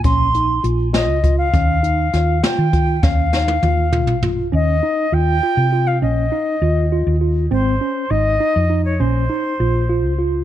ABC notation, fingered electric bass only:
X:1
M:5/8
L:1/16
Q:1/4=100
K:Ebmix
V:1 name="Fingered electric bass" clef=bass
B,,,4 B,,,3 D,,3 | E,,4 E,,2 z E,3 | E,,4 E,,3 B,,,3 | E,,2 z2 E,,2 z C,3 |
B,,,2 z2 E,,3 E,,3 | A,,,2 z2 A,,,2 z F,,3 | B,,,2 z2 B,,,3 D,,3 |]